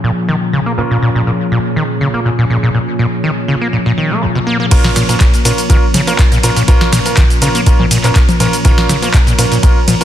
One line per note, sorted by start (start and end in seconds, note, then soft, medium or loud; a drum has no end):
0.00 4.67 A#2 medium
0.00 0.11 A#2 loud
0.00 4.67 F3 medium
0.00 0.75 C#4 medium
0.00 4.67 C#4 medium
0.00 0.75 F4 medium
0.00 4.67 G#4 medium
0.00 0.75 A#4 medium
0.28 0.36 D#3 loud
0.53 0.60 C#3 loud
0.66 0.73 A#3 medium
0.78 0.82 A#2 medium
0.78 4.69 C#4 medium
0.78 4.69 F4 medium
0.78 4.69 A#4 medium
0.91 0.97 A#2 loud
1.02 1.10 A#2 medium
1.15 1.22 A#2 medium
1.27 1.31 A#2 medium
1.52 1.59 A#2 medium
1.76 1.83 D#3 medium
2.01 2.08 C#3 loud
2.14 2.20 A#3 medium
2.25 2.30 A#2 medium
2.39 2.45 A#2 loud
2.50 2.57 A#2 loud
2.63 2.69 A#2 loud
2.75 2.79 A#2 medium
2.99 3.06 A#2 loud
3.24 3.31 D#3 loud
3.48 3.56 C#3 medium
3.61 3.68 A#3 medium
3.73 3.77 A#2 medium
3.86 3.92 A#2 loud
3.98 4.12 D#3 medium
4.11 4.24 A#3 medium
4.22 4.27 A#1 medium
4.35 4.39 B2 medium
4.47 4.58 A#3 loud
4.60 4.66 A#3 medium
4.71 4.76 A#2 medium
4.71 10.04 A#2 medium
4.71 10.04 F3 medium
4.71 10.04 C#4 medium
4.71 5.06 C#4 loud
4.71 5.06 F4 medium
4.71 5.06 A#4 loud
4.71 10.04 A#4 medium
4.71 kick loud
4.71 closed hi-hat medium
4.71 ride medium
4.71 crash loud
4.71 shaker soft
4.84 4.91 A#2 loud
4.84 snare medium
4.84 closed hi-hat soft
4.96 5.03 A#2 loud
4.96 snare medium
4.96 open hi-hat loud
4.96 ride medium
4.96 shaker medium
5.09 5.15 A#2 loud
5.09 5.22 C#4 medium
5.09 5.22 F4 medium
5.09 5.22 A#4 medium
5.09 closed hi-hat medium
5.09 shaker soft
5.21 5.25 A#2 medium
5.21 kick loud
5.21 clap loud
5.21 closed hi-hat medium
5.21 ride medium
5.21 shaker soft
5.34 closed hi-hat soft
5.34 shaker soft
5.45 5.52 A#2 loud
5.45 5.59 C#4 medium
5.45 5.59 F4 medium
5.45 5.59 A#4 medium
5.45 open hi-hat medium
5.45 ride medium
5.45 shaker medium
5.58 closed hi-hat medium
5.58 shaker soft
5.70 5.77 D#3 loud
5.70 5.84 C#4 medium
5.70 5.84 F4 medium
5.70 5.84 A#4 medium
5.70 kick loud
5.70 closed hi-hat medium
5.70 ride medium
5.70 shaker soft
5.94 6.01 C#3 loud
5.94 open hi-hat loud
5.94 ride medium
5.94 low conga medium
5.94 shaker medium
6.07 6.14 A#3 medium
6.07 6.20 C#4 medium
6.07 6.20 F4 medium
6.07 6.20 A#4 medium
6.07 closed hi-hat medium
6.07 shaker soft
6.19 6.23 A#2 medium
6.19 kick loud
6.19 clap loud
6.19 closed hi-hat medium
6.19 ride medium
6.19 shaker soft
6.32 6.38 A#2 loud
6.32 closed hi-hat soft
6.32 shaker soft
6.43 6.51 A#2 loud
6.43 6.57 C#4 medium
6.43 6.57 F4 medium
6.43 6.57 A#4 loud
6.43 open hi-hat medium
6.43 ride medium
6.43 shaker medium
6.56 6.63 A#2 loud
6.56 closed hi-hat medium
6.56 shaker soft
6.68 6.72 A#2 medium
6.68 7.03 C#4 loud
6.68 7.03 F4 medium
6.68 7.03 A#4 loud
6.68 kick loud
6.68 closed hi-hat medium
6.68 ride medium
6.68 shaker soft
6.81 snare medium
6.81 closed hi-hat soft
6.93 7.00 A#2 loud
6.93 snare medium
6.93 open hi-hat loud
6.93 ride medium
6.93 shaker medium
7.06 7.18 C#4 medium
7.06 7.18 F4 medium
7.06 7.18 A#4 medium
7.06 closed hi-hat medium
7.06 shaker soft
7.17 7.24 D#3 loud
7.17 kick loud
7.17 clap loud
7.17 closed hi-hat medium
7.17 ride medium
7.17 shaker soft
7.30 closed hi-hat soft
7.30 shaker soft
7.42 7.49 C#3 loud
7.42 7.56 C#4 medium
7.42 7.56 F4 medium
7.42 7.56 A#4 medium
7.42 open hi-hat loud
7.42 ride medium
7.42 shaker medium
7.55 7.61 A#3 medium
7.55 closed hi-hat medium
7.55 shaker soft
7.66 7.71 A#2 medium
7.66 7.80 C#4 medium
7.66 7.80 F4 medium
7.66 7.80 A#4 medium
7.66 kick loud
7.66 closed hi-hat medium
7.66 ride medium
7.66 shaker soft
7.79 7.86 A#2 loud
7.79 low conga medium
7.91 7.98 A#2 loud
7.91 open hi-hat loud
7.91 ride medium
7.91 shaker medium
8.04 8.10 A#2 loud
8.04 8.17 C#4 medium
8.04 8.17 F4 medium
8.04 8.17 A#4 medium
8.04 clap soft
8.04 closed hi-hat medium
8.04 shaker soft
8.16 8.20 A#2 medium
8.16 kick loud
8.16 clap loud
8.16 closed hi-hat medium
8.16 ride medium
8.16 shaker soft
8.29 closed hi-hat soft
8.29 low conga medium
8.29 shaker soft
8.40 8.47 A#2 loud
8.40 8.54 C#4 medium
8.40 8.54 F4 medium
8.40 8.54 A#4 loud
8.40 open hi-hat medium
8.40 ride medium
8.40 low conga medium
8.40 shaker medium
8.53 closed hi-hat medium
8.53 shaker soft
8.65 8.72 D#3 loud
8.65 8.99 C#4 loud
8.65 8.99 F4 medium
8.65 8.99 A#4 loud
8.65 kick loud
8.65 closed hi-hat medium
8.65 ride medium
8.65 shaker soft
8.78 snare medium
8.78 closed hi-hat soft
8.89 8.97 C#3 loud
8.89 snare medium
8.89 open hi-hat loud
8.89 ride medium
8.89 shaker medium
9.02 9.09 A#3 medium
9.02 9.15 C#4 medium
9.02 9.15 F4 medium
9.02 9.15 A#4 medium
9.02 closed hi-hat medium
9.02 shaker soft
9.14 9.18 A#2 medium
9.14 kick loud
9.14 clap loud
9.14 closed hi-hat medium
9.14 ride medium
9.14 shaker soft
9.27 9.33 A#2 loud
9.27 closed hi-hat soft
9.27 shaker soft
9.39 9.46 A#2 loud
9.39 9.53 C#4 medium
9.39 9.53 F4 medium
9.39 9.53 A#4 medium
9.39 open hi-hat loud
9.39 ride medium
9.39 shaker medium
9.52 9.58 A#2 loud
9.52 closed hi-hat medium
9.52 shaker soft
9.63 9.67 A#2 medium
9.63 9.77 C#4 medium
9.63 9.77 F4 medium
9.63 9.77 A#4 medium
9.63 kick loud
9.63 closed hi-hat medium
9.63 ride medium
9.63 shaker soft
9.88 9.95 A#2 loud
9.88 open hi-hat loud
9.88 ride medium
9.88 low conga loud
9.88 shaker medium
10.01 10.04 C#4 medium
10.01 10.04 F4 medium
10.01 10.04 A#4 medium
10.01 closed hi-hat medium